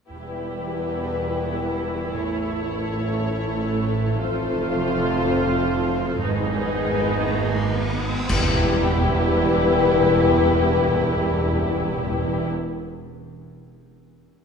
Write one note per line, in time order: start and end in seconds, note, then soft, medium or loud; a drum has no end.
0.10 2.12 E1 soft
0.10 2.11 E2 medium
0.10 1.09 E2 medium
0.10 2.11 E2 soft
0.10 4.16 E3 soft
0.10 2.12 G3 soft
0.10 2.11 B3 soft
0.10 4.16 E4 soft
0.10 2.11 G4 soft
0.10 2.11 B4 soft
2.15 4.20 A1 medium
2.15 4.20 A1 soft
2.15 4.20 A2 medium
2.15 6.07 A3 soft
2.15 4.16 C#4 soft
2.15 6.20 A4 medium
2.15 6.21 A4 soft
2.15 4.16 C#5 soft
4.19 6.25 F1 medium
4.19 6.25 F2 medium
4.19 6.07 F3 medium
4.19 6.21 C4 medium
4.19 6.21 F4 medium
4.19 6.21 C5 medium
4.19 riser medium
6.24 8.06 G#1 medium
6.24 8.29 G#1 medium
6.24 8.05 G#2 medium
6.24 7.93 D#3 medium
6.24 7.93 G#3 medium
6.24 7.93 B3 medium
6.24 8.06 D#4 medium
6.24 8.06 G#4 medium
6.24 7.93 B4 medium
6.24 8.06 B4 medium
8.29 12.49 E1 medium
8.29 12.47 E2 medium
8.29 12.48 E2 medium
8.29 8.36 E2 medium
8.29 12.48 E3 medium
8.29 12.47 G3 medium
8.29 12.49 B3 medium
8.29 12.49 E4 medium
8.29 12.48 G4 medium
8.29 12.49 B4 medium
8.29 concert bass drum medium
8.29 crash medium
8.29 impact medium
8.36 8.44 E2 medium
8.44 8.51 E2 medium
8.51 8.58 E2 medium
8.58 8.65 E2 medium
8.65 8.72 E2 medium
8.72 8.80 E2 medium
8.80 8.87 E2 medium
8.87 8.94 E2 medium
8.94 9.02 E2 medium
9.02 9.09 E2 medium
9.09 9.15 E2 medium
9.15 9.22 E2 medium
9.22 9.30 E2 medium
9.30 9.37 E2 medium
9.37 9.44 E2 medium
9.44 9.50 E2 medium
9.50 9.57 E2 medium
9.58 9.65 E2 medium
9.65 9.72 E2 medium
9.72 9.79 E2 medium
9.79 9.86 E2 medium
9.86 9.94 E2 medium
9.94 10.01 E2 medium
10.01 10.08 E2 medium
10.09 10.16 E2 medium
10.16 10.23 E2 medium
10.23 10.31 E2 medium
10.31 10.38 E2 medium
10.38 10.45 E2 medium
10.45 10.52 E2 medium
10.52 10.60 E2 medium
10.60 10.67 E2 medium
10.67 10.74 E2 medium
10.74 10.81 E2 medium
10.81 10.88 E2 medium
10.88 10.95 E2 medium
10.95 11.01 E2 medium
11.01 11.09 E2 medium
11.09 11.16 E2 medium
11.16 11.23 E2 medium
11.23 11.30 E2 medium
11.30 11.38 E2 medium
11.38 11.45 E2 medium
11.45 11.52 E2 medium
11.52 11.59 E2 medium
11.59 11.66 E2 medium
11.66 11.74 E2 medium
11.74 11.81 E2 medium
11.82 11.89 E2 medium
11.89 11.96 E2 medium
11.96 12.03 E2 medium
12.03 12.11 E2 medium
12.11 12.18 E2 medium
12.18 12.26 E2 medium
12.26 12.34 E2 medium
12.34 12.41 E2 medium
12.42 12.49 E2 medium